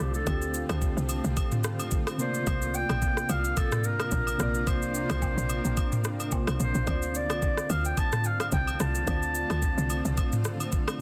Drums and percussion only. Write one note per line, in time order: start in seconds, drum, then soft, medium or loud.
0.00 cross-stick medium
0.14 shaker medium
0.27 kick loud
0.27 high agogo medium
0.27 shaker medium
0.42 shaker medium
0.54 shaker medium
0.69 cross-stick medium
0.69 high agogo medium
0.69 shaker medium
0.82 kick medium
0.82 shaker medium
0.97 shaker medium
1.09 high agogo medium
1.09 shaker medium
1.24 shaker medium
1.37 kick loud
1.37 high agogo medium
1.37 shaker medium
1.52 mid tom medium
1.52 shaker medium
1.64 cross-stick loud
1.64 shaker medium
1.79 high agogo medium
1.79 shaker medium
1.91 kick medium
1.91 shaker medium
2.07 cross-stick loud
2.07 high agogo medium
2.07 shaker medium
2.19 shaker medium
2.34 shaker medium
2.47 kick loud
2.47 high agogo medium
2.47 shaker medium
2.62 shaker medium
2.74 shaker medium
2.89 cross-stick medium
2.89 high agogo medium
2.89 shaker medium
3.02 kick medium
3.02 shaker medium
3.17 cross-stick medium
3.17 shaker medium
3.29 high agogo medium
3.29 shaker medium
3.44 shaker medium
3.57 kick loud
3.57 high agogo medium
3.57 shaker medium
3.72 cross-stick loud
3.72 mid tom medium
3.72 shaker medium
3.84 shaker medium
4.00 cross-stick medium
4.00 high agogo medium
4.00 shaker medium
4.11 kick medium
4.11 shaker medium
4.27 high agogo medium
4.27 shaker medium
4.40 cross-stick medium
4.40 shaker medium
4.54 shaker medium
4.67 kick loud
4.67 high agogo medium
4.67 shaker medium
4.82 shaker medium
4.95 shaker medium
5.10 cross-stick medium
5.10 high agogo medium
5.10 shaker medium
5.22 kick medium
5.22 low woodblock medium
5.22 shaker medium
5.38 shaker medium
5.49 high agogo medium
5.49 shaker medium
5.65 shaker medium
5.77 kick loud
5.77 high agogo medium
5.77 shaker medium
5.92 mid tom medium
5.92 shaker medium
6.04 cross-stick medium
6.04 shaker medium
6.20 high agogo medium
6.20 shaker medium
6.32 kick medium
6.32 low woodblock medium
6.32 shaker medium
6.47 cross-stick loud
6.47 high agogo medium
6.47 shaker medium
6.60 shaker medium
6.75 shaker medium
6.87 kick loud
6.87 high agogo medium
6.87 shaker medium
7.02 shaker medium
7.15 shaker medium
7.30 cross-stick medium
7.30 high agogo medium
7.30 shaker medium
7.42 kick loud
7.42 shaker medium
7.57 cross-stick medium
7.57 shaker medium
7.70 high agogo medium
7.70 shaker medium
7.85 shaker medium
7.97 kick loud
7.97 high agogo medium
7.97 shaker medium
8.12 cross-stick loud
8.12 mid tom medium
8.12 shaker medium
8.24 shaker medium
8.40 cross-stick medium
8.40 high agogo medium
8.40 shaker medium
8.52 kick medium
8.52 shaker medium
8.67 high agogo medium
8.67 shaker medium
8.80 cross-stick medium
8.80 shaker medium
8.95 shaker medium
9.07 kick loud
9.07 high agogo medium
9.07 shaker medium
9.22 shaker medium
9.35 shaker medium
9.50 cross-stick medium
9.50 high agogo medium
9.50 shaker medium
9.62 kick medium
9.62 shaker medium
9.78 shaker medium
9.90 high agogo medium
9.90 shaker medium
10.05 shaker medium
10.18 kick loud
10.18 high agogo medium
10.18 shaker medium
10.32 mid tom medium
10.32 shaker medium
10.44 cross-stick medium
10.44 shaker medium
10.60 high agogo medium
10.60 shaker medium
10.72 kick medium
10.72 shaker medium
10.88 cross-stick loud
10.88 high agogo medium
10.88 shaker medium